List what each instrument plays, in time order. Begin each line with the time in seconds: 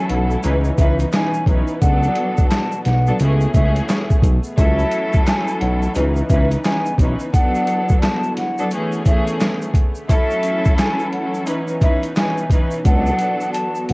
Already playing: analog synth pad E3 F#3 A3, string section F#3 C#4 E4 A4
0.09 analog synth bass B1, flute F#5, closed hi-hat
0.31 shaker
0.42 analog synth bass C#2, analog synth pad B2 B3 D#4, string section E3 C#4 D#4 B4, closed hi-hat, shaker
0.64 shaker
0.78 analog synth bass C#2, string section E3 C#4 D#4 B4, flute E5, kick, closed hi-hat, shaker
0.99 closed hi-hat, shaker
1.12 string section E3 C#4 D#4 B4, flute G#5, snare, clap, closed hi-hat, shaker
1.34 shaker
1.46 analog synth bass B1, string section E3 C#4 D#4 B4, kick, closed hi-hat, shaker
1.67 shaker
1.81 analog synth bass C#2, string section F#3 B3 D4 A4, analog synth pad F#4, flute F#5, kick, closed hi-hat, shaker
2.03 shaker
2.15 closed hi-hat
2.37 kick, shaker
2.49 flute A5, snare, clap, closed hi-hat, shaker
2.72 shaker
2.85 analog synth bass B1, flute F#5, snare, closed hi-hat, shaker
3.06 string section F#3 B3 D4 A4, shaker
3.19 analog synth bass C#2, string section E3 A3 C#4 G#4, analog synth pad A3 G#4, closed hi-hat, shaker
3.41 shaker
3.53 analog synth bass C#2, string section E3 A3 C#4 G#4, flute E5, kick, closed hi-hat, shaker
3.76 closed hi-hat, shaker
3.89 snare, clap, closed hi-hat, shaker
4.10 kick, shaker
4.22 analog synth bass B1, kick, closed hi-hat, shaker
4.44 shaker
4.57 analog synth bass C#2, analog synth pad E3 F#3 A3, string section F#3 C#4 E4 A4, flute E5, kick, closed hi-hat, shaker
4.79 shaker
4.92 closed hi-hat, shaker
5.13 kick, shaker
5.26 flute G#5, snare, clap, closed hi-hat, shaker
5.47 shaker
5.60 analog synth bass B1, flute F#5, closed hi-hat
5.82 shaker
5.93 analog synth bass C#2, analog synth pad C#3 B3 D#4, string section E3 C#4 D#4 B4, closed hi-hat, shaker
6.16 shaker
6.30 analog synth bass C#2, string section E3 C#4 D#4 B4, flute E5, kick, closed hi-hat, shaker
6.51 closed hi-hat, shaker
6.64 string section E3 C#4 D#4 B4, flute G#5, snare, clap, closed hi-hat, shaker
6.86 shaker
6.98 analog synth bass B1, string section E3 C#4 D#4 B4, kick, closed hi-hat, shaker
7.19 shaker
7.32 analog synth pad D3 B3 E4 F#4, string section F#3 B3 D4 A4, flute F#5, kick, closed hi-hat, shaker
7.55 shaker
7.67 closed hi-hat, shaker
7.89 kick, shaker
8.02 flute A5, snare, clap, closed hi-hat, shaker
8.23 shaker
8.37 flute F#5, snare, closed hi-hat
8.58 string section F#3 B3 D4 A4, shaker
8.71 string section E3 A3 C#4 G#4, analog synth pad A3 G#4, closed hi-hat, shaker
8.92 shaker
9.05 string section E3 A3 C#4 G#4, flute E5, kick, closed hi-hat, shaker
9.27 closed hi-hat, shaker
9.40 snare, clap, closed hi-hat, shaker
9.62 shaker
9.74 kick, closed hi-hat, shaker
9.95 shaker
10.08 analog synth pad E3 F#3, string section F#3 C#4 E4 A4, flute E5, kick, closed hi-hat, shaker
10.31 shaker
10.43 closed hi-hat, shaker
10.65 kick, shaker
10.78 flute G#5, snare, clap, closed hi-hat, shaker
10.99 shaker
11.12 flute F#5, closed hi-hat
11.34 shaker
11.45 analog synth pad B2 B3 D#4, string section E3 C#4 D#4 B4, closed hi-hat, shaker
11.68 shaker
11.81 string section E3 C#4 D#4 B4, flute E5, kick, closed hi-hat, shaker
12.03 closed hi-hat, shaker
12.16 string section E3 C#4 D#4 B4, flute G#5, snare, clap, closed hi-hat, shaker
12.38 shaker
12.50 string section E3 C#4 D#4 B4, kick, closed hi-hat, shaker
12.71 shaker
12.84 analog synth bass C#2, string section F#3 B3 D4 A4, analog synth pad F#4, flute F#5, kick, closed hi-hat, shaker
13.06 shaker
13.19 closed hi-hat, shaker
13.41 shaker
13.53 flute A5, closed hi-hat, shaker
13.75 shaker
13.89 analog synth bass B1, flute F#5, closed hi-hat